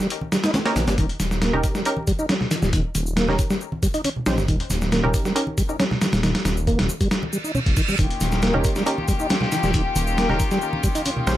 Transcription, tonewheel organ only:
0.32 0.37 G3 medium
0.44 0.51 D#4 medium
0.54 0.59 C#4 medium
0.76 0.81 D#3 medium
0.88 0.95 G3 medium
0.98 1.06 D#3 medium
1.42 1.53 A#3 medium
1.75 1.82 G3 medium
2.07 2.12 G3 medium
2.19 2.26 D#4 medium
2.29 2.34 C#4 medium
2.51 2.56 D#3 medium
2.62 2.70 G3 medium
2.73 2.81 D#3 medium
3.17 3.28 A#3 medium
3.50 3.58 G3 medium
3.83 3.88 G3 medium
3.94 4.01 D#4 medium
4.05 4.09 C#4 medium
4.27 4.31 D#3 medium
4.38 4.45 G3 medium
4.48 4.56 D#3 medium
4.92 5.03 A#3 medium
5.25 5.33 G3 medium
5.58 5.63 G3 medium
5.69 5.76 D#4 medium
5.80 5.85 C#4 medium
6.02 6.06 D#3 medium
6.13 6.20 G3 medium
6.24 6.31 D#3 medium
6.67 6.78 A#3 medium
7.01 7.08 G3 medium
7.33 7.38 G3 medium
7.44 7.52 D#4 medium
7.55 7.60 C#4 medium
7.77 7.82 D#3 medium
7.88 7.96 G3 medium
7.99 8.07 D#3 medium
8.43 8.54 A#3 medium
8.76 8.83 G3 medium
9.08 9.13 G3 medium
9.20 9.27 D#4 medium
9.30 9.35 C#4 medium
9.52 9.57 D#3 medium
9.64 9.71 G3 medium
9.74 9.82 D#3 medium
10.18 10.29 A#3 medium
10.51 10.58 G3 medium
10.84 10.88 G3 medium
10.95 11.02 D#4 medium
11.06 11.10 C#4 medium
11.28 11.32 D#3 medium

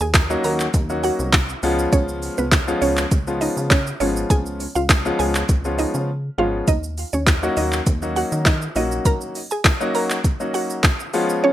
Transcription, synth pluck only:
0.01 0.11 G#4 medium
0.01 0.10 G#5 medium
0.44 0.87 A#4 medium
0.44 0.87 A#5 medium
1.04 1.15 F#4 medium
1.04 1.14 F#5 medium
1.93 2.04 C#4 medium
1.93 2.03 C#5 loud
2.38 2.48 B3 medium
2.38 2.48 B4 medium
2.82 3.25 C#4 medium
2.82 3.24 C#5 medium
3.41 3.52 D#4 medium
3.41 3.52 D#5 medium
3.70 3.82 C#4 medium
3.70 3.81 C#5 medium
4.00 4.12 C#4 medium
4.00 4.11 C#5 medium
4.30 4.41 G#4 medium
4.30 4.41 G#5 loud
4.75 4.86 F4 medium
4.75 4.85 F5 medium
5.19 5.62 G#4 medium
5.19 5.62 G#5 medium
5.79 5.90 D#4 medium
5.79 5.89 D#5 medium
6.38 6.50 F4 medium
6.38 6.49 F5 medium
6.68 6.79 D#4 medium
6.68 6.78 D#5 loud
7.13 7.23 C#4 medium
7.13 7.23 C#5 medium
7.57 8.00 D#4 medium
7.57 8.00 D#5 medium
8.16 8.28 F#4 medium
8.16 8.27 F#5 medium
8.46 8.58 D#4 medium
8.46 8.57 D#5 medium
8.76 8.87 D#4 medium
8.76 8.87 D#5 medium
9.06 9.17 A#4 medium
9.06 9.16 A#5 loud
9.51 9.61 G#4 medium
9.51 9.61 G#5 medium
9.95 10.38 A#4 medium
9.95 10.37 A#5 medium
10.54 10.65 F#4 medium
10.54 10.65 F#5 medium
11.44 11.53 C#4 medium
11.44 11.53 C#5 loud

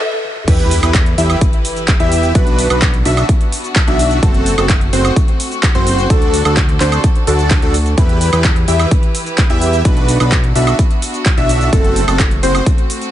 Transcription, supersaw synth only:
0.48 0.80 E4 medium
0.48 0.80 G4 medium
0.48 0.80 B4 medium
0.83 0.96 E4 medium
0.83 0.96 G4 medium
0.83 0.96 B4 medium
1.18 1.39 E4 medium
1.18 1.39 G4 medium
1.18 1.39 E5 loud
2.00 2.32 E4 loud
2.00 2.32 G4 medium
2.00 2.32 E5 loud
2.35 2.67 D4 medium
2.35 2.67 F#4 medium
2.35 2.67 B4 medium
2.70 2.83 D4 medium
2.70 2.83 F#4 medium
2.70 2.83 B4 medium
3.05 3.26 D4 medium
3.05 3.26 F#4 medium
3.05 3.26 E5 loud
3.87 4.20 D4 medium
3.87 4.20 F#4 medium
3.87 4.20 E5 loud
4.23 4.55 C4 medium
4.23 4.55 F#4 medium
4.23 4.55 A4 medium
4.58 4.71 C4 medium
4.58 4.71 F#4 medium
4.58 4.71 A4 medium
4.93 5.14 C4 medium
4.93 5.14 F#4 medium
4.93 5.14 C5 loud
5.75 6.07 C4 loud
5.75 6.07 F#4 medium
5.75 6.07 C5 loud
6.10 6.42 D4 medium
6.10 6.42 F#4 medium
6.10 6.42 A4 medium
6.45 6.58 D4 medium
6.45 6.58 F#4 medium
6.45 6.58 A4 medium
6.81 7.01 D4 medium
6.81 7.01 F#4 medium
6.81 7.01 C5 loud
7.27 7.60 D4 medium
7.27 7.60 F#4 medium
7.27 7.60 A4 loud
7.62 7.75 D4 medium
7.62 7.75 F#4 medium
7.62 7.75 A4 loud
7.98 8.30 E4 medium
7.98 8.30 G4 medium
7.98 8.30 B4 medium
8.33 8.46 E4 medium
8.33 8.46 G4 medium
8.33 8.46 B4 medium
8.68 8.89 E4 medium
8.68 8.89 G4 medium
8.68 8.89 E5 loud
9.50 9.82 E4 loud
9.50 9.82 G4 medium
9.50 9.82 E5 loud
9.85 10.18 D4 medium
9.85 10.18 F#4 medium
9.85 10.18 B4 medium
10.20 10.33 D4 medium
10.20 10.33 F#4 medium
10.20 10.33 B4 medium
10.55 10.76 D4 medium
10.55 10.76 F#4 medium
10.55 10.76 E5 loud
11.38 11.70 D4 loud
11.38 11.70 F#4 medium
11.38 11.70 E5 loud
11.73 12.05 C4 medium
11.73 12.05 F#4 medium
11.73 12.05 A4 medium
12.08 12.21 C4 medium
12.08 12.21 F#4 medium
12.08 12.21 A4 medium
12.43 12.64 C4 medium
12.43 12.64 F#4 medium
12.43 12.64 C5 loud

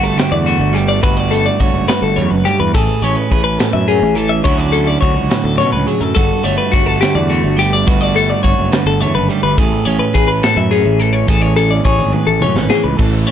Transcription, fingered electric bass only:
0.00 0.14 G1 medium
0.32 0.57 E2 loud
0.60 1.48 G1 medium
1.60 1.73 G1 loud
1.74 1.87 F#1 medium
2.02 2.18 G1 medium
2.17 2.30 E2 medium
2.31 2.44 F#1 medium
2.60 2.72 E2 medium
2.75 2.87 A1 loud
3.02 3.15 A1 medium
3.31 3.56 A1 medium
3.74 3.99 F#2 medium
4.02 4.40 A1 medium
4.45 4.95 D2 loud
5.02 5.14 D2 medium
5.14 5.28 C#2 medium
5.44 5.60 D2 medium
5.58 5.71 B2 medium
5.73 5.86 C#2 medium
6.01 6.14 F#2 medium
6.17 6.29 G1 loud
6.44 6.57 G1 medium
6.74 6.98 G1 medium
7.15 7.41 E2 medium
7.44 8.32 G1 medium
8.44 8.56 G1 loud
8.58 8.70 F#1 medium
8.86 9.01 G1 loud
9.00 9.13 E2 medium
9.15 9.27 F#1 medium
9.43 9.56 G1 medium
9.58 9.70 A1 loud
9.86 9.99 A1 medium
10.14 10.40 A1 medium
10.57 10.82 F#2 medium
10.86 11.24 A1 medium
11.28 11.79 A1 loud
11.85 11.98 A1 loud
11.99 12.12 G#1 medium
12.27 12.42 A1 medium
12.41 12.54 F#2 medium
12.56 12.69 G#1 medium
12.84 12.97 C#2 medium
12.99 13.25 A1 medium

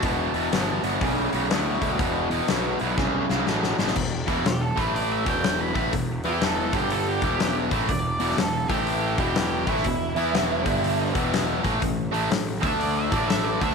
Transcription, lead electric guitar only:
0.00 1.29 A5 medium
4.47 4.62 G4 medium
4.62 4.79 A4 medium
4.79 4.94 B4 medium
4.94 5.11 D5 medium
5.12 5.28 E5 medium
5.28 5.60 G5 medium
5.61 5.87 B5 medium
6.27 6.42 G4 medium
6.42 6.74 A4 medium
6.76 6.92 G4 medium
6.92 7.08 A4 medium
7.08 7.56 G4 medium
7.89 8.37 D5 loud
8.40 8.71 A4 medium
8.71 9.18 G4 medium
9.20 9.67 G4 medium
9.68 11.11 E4 medium
12.63 12.79 E5 medium
12.80 12.96 D5 loud
12.97 13.13 E5 medium
13.13 13.28 D5 medium
13.28 13.45 E5 loud
13.45 13.61 D5 medium
13.63 13.75 E5 medium

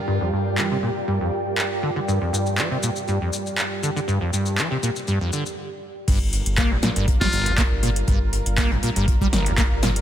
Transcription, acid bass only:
0.08 0.19 G2 loud
0.21 0.31 F2 medium
0.33 0.59 G2 medium
0.58 0.69 F3 medium
0.71 0.78 C3 loud
0.83 0.90 A#2 loud
1.08 1.19 G2 loud
1.21 1.31 F2 medium
1.83 1.90 D3 loud
1.96 2.00 D3 loud
2.08 2.19 G2 loud
2.21 2.31 F2 medium
2.33 2.59 G2 medium
2.58 2.69 F3 loud
2.71 2.78 C3 loud
2.83 2.90 A#2 loud
3.08 3.19 G2 loud
3.21 3.31 F2 medium
3.83 3.90 D3 loud
3.96 4.00 D3 loud
4.08 4.19 G2 loud
4.21 4.31 F2 medium
4.33 4.59 G2 medium
4.58 4.69 F3 loud
4.71 4.78 C3 loud
4.83 4.90 A#2 loud
5.08 5.19 G2 loud
5.21 5.31 F2 medium
5.33 5.44 D3 medium
6.08 6.19 G2 medium
6.58 6.73 A#3 loud
6.71 6.78 F2 medium
6.83 6.90 A#2 loud
6.96 7.06 G2 loud
7.21 7.28 G3 loud
7.33 7.48 G1 loud
7.46 7.53 G2 loud
7.58 7.62 A#3 loud
7.83 7.90 A#2 loud
8.08 8.19 G2 medium
8.58 8.73 A#3 loud
8.71 8.78 F2 medium
8.83 8.90 A#2 loud
8.96 9.06 G2 loud
9.21 9.28 G3 loud
9.33 9.48 G1 loud
9.46 9.53 G2 loud
9.58 9.62 A#3 loud
9.83 9.90 A#2 loud

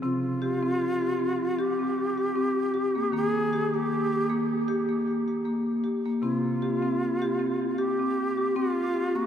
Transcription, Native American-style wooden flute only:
0.04 1.62 F4 medium
1.60 3.14 G4 medium
3.16 3.77 G#4 loud
3.76 4.52 G4 medium
6.23 6.34 E4 medium
6.34 7.80 F4 medium
7.79 8.57 G4 medium
8.56 9.17 F4 medium
9.16 9.27 F#4 medium

